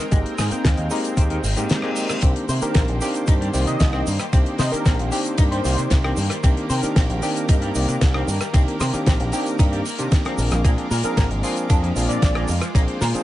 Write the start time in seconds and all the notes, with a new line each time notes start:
Already playing: G#3 C4 A#4 G5
0.11 G#1 G#3 A#3 C4 D#4 G4, kick, closed hi-hat, shaker
0.26 closed hi-hat
0.38 G#2 G#4, cross-stick, snare, open hi-hat, shaker
0.51 G#3 A#3 C4 D#4 G5, muted picked electric bass stroke, closed hi-hat, shaker
0.65 D#2 G#3, kick, snare, closed hi-hat, shaker
0.77 D#2, closed hi-hat
0.90 G#3 A#3 C4 D#4 G4, open hi-hat, shaker
1.04 closed hi-hat, shaker
1.17 D#2 G#3 A#3 C4 D#4 G4, kick, closed hi-hat, reverse cymbal, shaker
1.30 D#3, closed hi-hat
1.43 G#1, open hi-hat, shaker
1.56 G#2 G#3 A#3 C4 D#4 G4, closed hi-hat, shaker
1.69 snare, closed hi-hat, shaker
1.82 G#3 A#3 C4 D#4 G4, cross-stick
1.96 open hi-hat, shaker
2.09 D#3, cross-stick, closed hi-hat, shaker
2.22 C2 D#3 A#3 C4 D4 G4 C5 D6, kick, closed hi-hat, ride, shaker
2.36 closed hi-hat
2.49 C3 C5, open hi-hat, shaker
2.62 D#3 A#3 C4 D4 G4 A#4, muted picked electric bass stroke, closed hi-hat, shaker
2.74 A#1 C4, kick, snare, closed hi-hat, ride, shaker
2.88 A#1, closed hi-hat
3.01 D#3 A#3 C4 D4 G4, open hi-hat, shaker
3.14 closed hi-hat, shaker
3.27 G2 D#3 A#3 C4 D4 D#4 G4, kick, closed hi-hat, ride, shaker
3.41 G3, closed hi-hat
3.53 C2 D#3 A#3 C4 G4 D5, open hi-hat, shaker
3.67 C3 D#5, closed hi-hat, shaker
3.80 C2, kick, snare, closed hi-hat, ride, shaker
3.93 D#3 A#3 C4 D4 G4, cross-stick
4.07 G2, open hi-hat, shaker
4.19 G3, cross-stick, closed hi-hat, shaker
4.32 C2 D#3 A#3 C4 D4 G4, kick, closed hi-hat, ride, shaker
4.46 closed hi-hat
4.58 C3 C5 D#5, snare, open hi-hat, shaker
4.72 D#3 A#3 C4 D4 G4 A#4, muted picked electric bass stroke, closed hi-hat, shaker
4.85 A#1 C4, kick, snare, closed hi-hat, ride, shaker
4.99 A#1, closed hi-hat
5.11 D#3 A#3 C4 D4 G4, open hi-hat, shaker
5.25 closed hi-hat, shaker
5.38 G2 D#3 A#3 C4 D4 D#4 G4, kick, closed hi-hat, ride, shaker
5.51 G3 C5, closed hi-hat
5.64 C2 D#3 A#3 C4 G4 D5, open hi-hat, shaker
5.78 C3, closed hi-hat, shaker
5.90 C2, kick, snare, closed hi-hat, ride, shaker
6.04 D#3 A#3 C4 D4 G4, cross-stick
6.17 G2, open hi-hat, shaker
6.30 G3, cross-stick, closed hi-hat, shaker
6.43 C2 D#3 A#3 C4 D4 G4 A#4, kick, closed hi-hat, ride, shaker
6.57 closed hi-hat
6.70 C3 C5, open hi-hat, shaker
6.83 D#3 A#3 C4 D4 G4, muted picked electric bass stroke, closed hi-hat, shaker
6.96 A#1 C4, kick, snare, closed hi-hat, ride, shaker
7.09 A#1, closed hi-hat
7.22 D#3 A#3 C4 D4 G4, open hi-hat, shaker
7.36 closed hi-hat, shaker
7.49 G2 A#3 C4 D4 D#4 G4, kick, closed hi-hat, ride, shaker
7.62 G3, closed hi-hat
7.75 C2 D#3 A#3 C4 G4 D5, open hi-hat, shaker
7.88 C3, closed hi-hat, shaker
8.01 C2, kick, snare, closed hi-hat, ride, shaker
8.14 D#3 A#3 C4 D4 G4, cross-stick
8.28 G2, open hi-hat, shaker
8.41 G3, cross-stick, closed hi-hat, shaker
8.53 C2 D#3 A#3 C4 D4 G4, kick, closed hi-hat, ride, shaker
8.68 closed hi-hat
8.80 C3 C5, cross-stick, snare, open hi-hat, shaker
8.93 D#3 A#3 C4 D4 G4, muted picked electric bass stroke, closed hi-hat, shaker
9.06 A#1 C4, kick, snare, closed hi-hat, ride, shaker
9.20 A#1, closed hi-hat
9.32 D#3 A#3 C4 D4 G4, open hi-hat, shaker
9.46 closed hi-hat, shaker
9.59 G2 D#3 A#3 C4 D4 D#4 G4, kick, closed hi-hat, ride, shaker
9.72 G3, closed hi-hat
9.86 open hi-hat, shaker
9.98 C3 D#3 A#3 C4 D4 G4, closed hi-hat, shaker
10.11 kick, snare, closed hi-hat, ride, shaker
10.25 F3 A#3 C4 D4 G#4, cross-stick, closed hi-hat
10.38 A#1 G#3 F4, open hi-hat, shaker
10.51 A#1 F3, cross-stick, closed hi-hat, shaker
10.64 A#1 F3 A#3 C4 D4 G#4, kick, closed hi-hat, ride, shaker
10.78 closed hi-hat
10.91 A#2 A#4, open hi-hat, shaker
11.03 F3 A#3 C4 D4 G#4 A#4, muted picked electric bass stroke, closed hi-hat, shaker
11.17 G#1 A#3, kick, snare, closed hi-hat, ride, shaker
11.30 G#1, closed hi-hat
11.43 F3 A#3 C4 D4 F4 G#4, open hi-hat, shaker
11.56 closed hi-hat, shaker
11.69 F2 F3 A#3 C4 D4 G#4, kick, closed hi-hat, ride, shaker
11.83 F3, closed hi-hat
11.96 A#1 F3 A#3 C4 D4 G#4, open hi-hat, shaker
12.09 A#2 D5, muted picked electric bass stroke, closed hi-hat, shaker
12.22 A#1, kick, snare, closed hi-hat, ride, shaker
12.35 F3 A#3 C4 D4 G#4, cross-stick
12.48 F2 C5, open hi-hat, shaker
12.61 F3, cross-stick, closed hi-hat, shaker
12.74 A#1 F3 A#3 C4 D4 G#4, kick, closed hi-hat, ride, shaker
12.88 closed hi-hat
13.01 A#2 A#4, snare, open hi-hat, shaker
13.14 F3 A#3 C4 D4 G#4, muted picked electric bass stroke, closed hi-hat, shaker